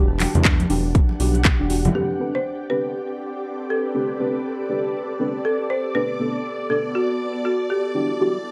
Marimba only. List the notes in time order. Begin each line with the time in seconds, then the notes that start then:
Already playing: G4
1.95 G4
2.35 C5
2.70 B4
3.70 A4
5.45 A4
5.70 C5
5.95 B4
6.70 A4
6.95 F#4
7.45 F#4
7.70 G4